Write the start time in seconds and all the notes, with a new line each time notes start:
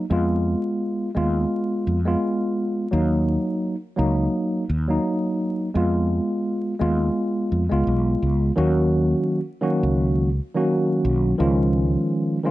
0.10 F2 G#3 B3 F4
1.15 D#2 G#3 B3 F4
1.87 F2
2.05 G#3 B3 F4
2.91 D#2 F#3 A#3 D#4
3.96 C#2 F#3 A#3 D#4
4.69 D#2
4.88 F#3 A#3 D#4
5.75 F2 G#3 B3 F4
6.79 D#2 G#3 B3 F4
7.52 F2
7.70 C#2 G#3 B3 F4
7.87 B1
8.22 C#2
8.56 D#2 D#3 F#3 A#3 C#4 F#4
9.61 D#3 F#3 A#3 C#4 F#4
9.83 C#2
10.55 D#3 F#3 A#3 C#4 F#4
11.05 B1
11.38 C#2 D#3 F3 G#3 C#4 F4
12.44 D#3 F3 G#3 C#4 F4